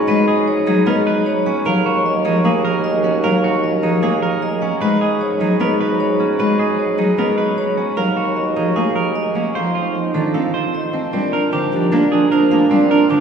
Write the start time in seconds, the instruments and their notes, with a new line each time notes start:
Already playing: bassoon G#2, clean electric guitar C#4, clarinet F#4, vibraphone F#5
0.08 cello G#3, clean electric guitar B4, vibraphone D#5
0.28 clean electric guitar G#4
0.48 vibraphone C#5
0.67 cello F#3, clean electric guitar D#4, vibraphone G#4
0.86 cello B3, clean electric guitar A#4, vibraphone D#5
1.07 clean electric guitar B4
1.26 vibraphone C#5
1.46 clean electric guitar C#4, vibraphone F#5
1.65 bassoon D#2, cello F#3, clarinet F#4, clean electric guitar A#4, vibraphone F5
1.86 clean electric guitar F#4
2.06 vibraphone D#5
2.25 cello F3, clean electric guitar D#4, vibraphone G#4
2.45 cello A#3, clean electric guitar G#4, vibraphone F5
2.65 clean electric guitar A#4
2.84 vibraphone D#5
3.04 clean electric guitar C#4, vibraphone F#5
3.24 cello F#3, clean electric guitar A#4, vibraphone F5
3.44 clean electric guitar F#4
3.64 vibraphone D#5
3.83 cello F3, clean electric guitar D#4, vibraphone G#4
4.02 cello A#3, clean electric guitar G#4, vibraphone F5
4.22 clean electric guitar A#4
4.42 vibraphone D#5
4.62 clean electric guitar C#4, vibraphone F#5
4.81 bassoon G#2, cello G#3, clarinet F#4, clean electric guitar B4, vibraphone D#5
5.01 clean electric guitar G#4
5.21 vibraphone C#5
5.40 cello F#3, clean electric guitar D#4, vibraphone G#4
5.60 cello B3, clean electric guitar A#4, vibraphone D#5
5.81 clean electric guitar B4
6.00 vibraphone C#5
6.20 clean electric guitar C#4, vibraphone F#5
6.39 cello G#3, clean electric guitar B4, vibraphone D#5
6.59 clean electric guitar G#4
6.79 vibraphone C#5
6.98 cello F#3, clean electric guitar D#4, vibraphone G#4
7.18 cello B3, clean electric guitar A#4, vibraphone D#5
7.38 clean electric guitar B4
7.58 vibraphone C#5
7.77 clean electric guitar C#4, vibraphone F#5
7.97 bassoon D#2, cello F#3, clarinet F#4, clean electric guitar A#4, vibraphone F5
8.17 clean electric guitar F#4
8.36 vibraphone D#5
8.56 cello F3, clean electric guitar D#4, vibraphone G#4
8.76 cello A#3, clean electric guitar G#4, vibraphone F5
8.96 clean electric guitar A#4
9.15 vibraphone D#5
9.35 cello A#3, clean electric guitar C#4, vibraphone F#5
9.55 bassoon F2, cello F3, clarinet D#4, clean electric guitar C5, vibraphone F5
9.75 clean electric guitar F4
9.95 vibraphone D#5
10.14 cello D#3, clean electric guitar D4, vibraphone A4
10.34 cello C4, clean electric guitar A4, vibraphone F5
10.54 clean electric guitar C5
10.74 vibraphone D#5
10.93 cello C4, clean electric guitar C4, vibraphone A5
11.13 bassoon A#2, cello G3, clean electric guitar C4, clarinet D4, vibraphone D5
11.33 clarinet D4, clean electric guitar A#4
11.53 cello D3, clarinet D4, clean electric guitar G4, vibraphone C5
11.72 cello F3, clarinet D4, vibraphone G4
11.92 cello A#3, clean electric guitar D4, clarinet D4, vibraphone D5
12.12 clarinet D4, clean electric guitar G#4
12.32 clarinet D4, clean electric guitar A#4, vibraphone C5
12.51 cello A#3, clarinet D4, vibraphone F5
12.71 cello G3, clean electric guitar C4, clarinet D4, vibraphone D5
12.91 clarinet D4, clean electric guitar A#4
13.10 cello D3, clarinet D4, clean electric guitar G4, vibraphone C5